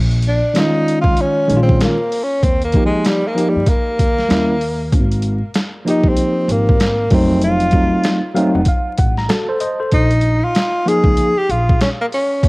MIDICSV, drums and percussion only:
0, 0, Header, 1, 2, 480
1, 0, Start_track
1, 0, Tempo, 625000
1, 1865, Time_signature, 4, 2, 24, 8
1, 9589, End_track
2, 0, Start_track
2, 0, Title_t, "Drums"
2, 87, Note_on_c, 9, 42, 51
2, 164, Note_off_c, 9, 42, 0
2, 172, Note_on_c, 9, 42, 60
2, 249, Note_off_c, 9, 42, 0
2, 421, Note_on_c, 9, 42, 80
2, 431, Note_on_c, 9, 38, 103
2, 498, Note_off_c, 9, 42, 0
2, 508, Note_off_c, 9, 38, 0
2, 677, Note_on_c, 9, 42, 69
2, 753, Note_off_c, 9, 42, 0
2, 798, Note_on_c, 9, 36, 92
2, 875, Note_off_c, 9, 36, 0
2, 896, Note_on_c, 9, 42, 84
2, 973, Note_off_c, 9, 42, 0
2, 1149, Note_on_c, 9, 42, 79
2, 1226, Note_off_c, 9, 42, 0
2, 1299, Note_on_c, 9, 36, 87
2, 1376, Note_off_c, 9, 36, 0
2, 1387, Note_on_c, 9, 42, 80
2, 1393, Note_on_c, 9, 38, 105
2, 1464, Note_off_c, 9, 42, 0
2, 1469, Note_off_c, 9, 38, 0
2, 1629, Note_on_c, 9, 46, 58
2, 1706, Note_off_c, 9, 46, 0
2, 1865, Note_on_c, 9, 36, 103
2, 1868, Note_on_c, 9, 42, 87
2, 1942, Note_off_c, 9, 36, 0
2, 1945, Note_off_c, 9, 42, 0
2, 2009, Note_on_c, 9, 42, 51
2, 2086, Note_off_c, 9, 42, 0
2, 2091, Note_on_c, 9, 42, 55
2, 2102, Note_on_c, 9, 36, 90
2, 2168, Note_off_c, 9, 42, 0
2, 2179, Note_off_c, 9, 36, 0
2, 2339, Note_on_c, 9, 42, 89
2, 2348, Note_on_c, 9, 38, 100
2, 2415, Note_off_c, 9, 42, 0
2, 2425, Note_off_c, 9, 38, 0
2, 2593, Note_on_c, 9, 42, 84
2, 2670, Note_off_c, 9, 42, 0
2, 2814, Note_on_c, 9, 42, 89
2, 2816, Note_on_c, 9, 36, 88
2, 2891, Note_off_c, 9, 42, 0
2, 2893, Note_off_c, 9, 36, 0
2, 3066, Note_on_c, 9, 36, 91
2, 3066, Note_on_c, 9, 42, 83
2, 3143, Note_off_c, 9, 36, 0
2, 3143, Note_off_c, 9, 42, 0
2, 3214, Note_on_c, 9, 38, 31
2, 3291, Note_off_c, 9, 38, 0
2, 3303, Note_on_c, 9, 42, 75
2, 3308, Note_on_c, 9, 38, 101
2, 3380, Note_off_c, 9, 42, 0
2, 3385, Note_off_c, 9, 38, 0
2, 3541, Note_on_c, 9, 46, 59
2, 3618, Note_off_c, 9, 46, 0
2, 3782, Note_on_c, 9, 36, 104
2, 3782, Note_on_c, 9, 42, 89
2, 3859, Note_off_c, 9, 36, 0
2, 3859, Note_off_c, 9, 42, 0
2, 3929, Note_on_c, 9, 42, 54
2, 4005, Note_off_c, 9, 42, 0
2, 4010, Note_on_c, 9, 42, 60
2, 4087, Note_off_c, 9, 42, 0
2, 4257, Note_on_c, 9, 42, 93
2, 4266, Note_on_c, 9, 38, 106
2, 4333, Note_off_c, 9, 42, 0
2, 4343, Note_off_c, 9, 38, 0
2, 4512, Note_on_c, 9, 42, 84
2, 4589, Note_off_c, 9, 42, 0
2, 4635, Note_on_c, 9, 36, 100
2, 4711, Note_off_c, 9, 36, 0
2, 4735, Note_on_c, 9, 42, 94
2, 4811, Note_off_c, 9, 42, 0
2, 4984, Note_on_c, 9, 42, 81
2, 5061, Note_off_c, 9, 42, 0
2, 5136, Note_on_c, 9, 36, 92
2, 5213, Note_off_c, 9, 36, 0
2, 5221, Note_on_c, 9, 42, 88
2, 5227, Note_on_c, 9, 38, 121
2, 5298, Note_off_c, 9, 42, 0
2, 5303, Note_off_c, 9, 38, 0
2, 5455, Note_on_c, 9, 46, 57
2, 5460, Note_on_c, 9, 36, 114
2, 5532, Note_off_c, 9, 46, 0
2, 5537, Note_off_c, 9, 36, 0
2, 5695, Note_on_c, 9, 42, 84
2, 5772, Note_off_c, 9, 42, 0
2, 5838, Note_on_c, 9, 42, 56
2, 5915, Note_off_c, 9, 42, 0
2, 5922, Note_on_c, 9, 42, 63
2, 5937, Note_on_c, 9, 36, 79
2, 5999, Note_off_c, 9, 42, 0
2, 6014, Note_off_c, 9, 36, 0
2, 6172, Note_on_c, 9, 42, 83
2, 6182, Note_on_c, 9, 38, 99
2, 6249, Note_off_c, 9, 42, 0
2, 6258, Note_off_c, 9, 38, 0
2, 6424, Note_on_c, 9, 42, 78
2, 6501, Note_off_c, 9, 42, 0
2, 6645, Note_on_c, 9, 42, 98
2, 6651, Note_on_c, 9, 36, 91
2, 6722, Note_off_c, 9, 42, 0
2, 6728, Note_off_c, 9, 36, 0
2, 6895, Note_on_c, 9, 42, 85
2, 6902, Note_on_c, 9, 36, 95
2, 6971, Note_off_c, 9, 42, 0
2, 6979, Note_off_c, 9, 36, 0
2, 7047, Note_on_c, 9, 38, 34
2, 7124, Note_off_c, 9, 38, 0
2, 7138, Note_on_c, 9, 42, 86
2, 7143, Note_on_c, 9, 38, 110
2, 7215, Note_off_c, 9, 42, 0
2, 7220, Note_off_c, 9, 38, 0
2, 7376, Note_on_c, 9, 42, 84
2, 7453, Note_off_c, 9, 42, 0
2, 7615, Note_on_c, 9, 42, 78
2, 7620, Note_on_c, 9, 36, 97
2, 7692, Note_off_c, 9, 42, 0
2, 7697, Note_off_c, 9, 36, 0
2, 7762, Note_on_c, 9, 42, 49
2, 7839, Note_off_c, 9, 42, 0
2, 7843, Note_on_c, 9, 42, 64
2, 7920, Note_off_c, 9, 42, 0
2, 8101, Note_on_c, 9, 42, 87
2, 8111, Note_on_c, 9, 38, 97
2, 8178, Note_off_c, 9, 42, 0
2, 8188, Note_off_c, 9, 38, 0
2, 8357, Note_on_c, 9, 42, 81
2, 8433, Note_off_c, 9, 42, 0
2, 8478, Note_on_c, 9, 36, 104
2, 8555, Note_off_c, 9, 36, 0
2, 8579, Note_on_c, 9, 42, 90
2, 8656, Note_off_c, 9, 42, 0
2, 8829, Note_on_c, 9, 42, 80
2, 8906, Note_off_c, 9, 42, 0
2, 8980, Note_on_c, 9, 36, 98
2, 9057, Note_off_c, 9, 36, 0
2, 9067, Note_on_c, 9, 42, 76
2, 9072, Note_on_c, 9, 38, 119
2, 9144, Note_off_c, 9, 42, 0
2, 9149, Note_off_c, 9, 38, 0
2, 9310, Note_on_c, 9, 46, 60
2, 9387, Note_off_c, 9, 46, 0
2, 9547, Note_on_c, 9, 36, 99
2, 9550, Note_on_c, 9, 42, 85
2, 9589, Note_off_c, 9, 36, 0
2, 9589, Note_off_c, 9, 42, 0
2, 9589, End_track
0, 0, End_of_file